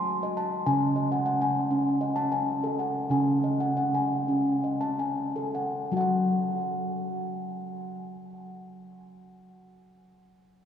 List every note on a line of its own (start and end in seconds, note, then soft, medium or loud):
0.00 0.62 F#3 medium
0.00 0.37 C6 medium
0.23 0.52 D#5 medium
0.37 0.82 A5 medium
0.66 3.06 C#3 medium
0.66 0.96 C#4 medium
0.66 1.11 G#5 medium
0.96 1.41 D#5 soft
1.12 1.25 F#5 medium
1.26 1.56 F#5 medium
1.42 1.86 G#5 medium
1.71 2.01 C#4 medium
2.01 2.47 D#5 medium
2.16 2.47 A5 medium
2.32 2.78 G#5 medium
2.64 2.95 A4 medium
2.79 3.27 F#5 soft
3.10 5.88 C#3 medium
3.10 3.43 C#4 medium
3.10 3.60 G#5 medium
3.44 3.94 D#5 soft
3.60 3.76 F#5 medium
3.77 4.10 F#5 medium
3.95 4.45 G#5 soft
4.28 4.63 C#4 medium
4.64 5.17 D#5 soft
4.81 5.17 A5 medium
4.99 5.54 G#5 soft
5.36 5.74 A4 medium
5.55 5.96 F#5 soft
5.92 8.94 F#3 medium
5.92 9.00 F#4 medium
5.97 6.01 F#5 medium
6.01 9.08 F#5 medium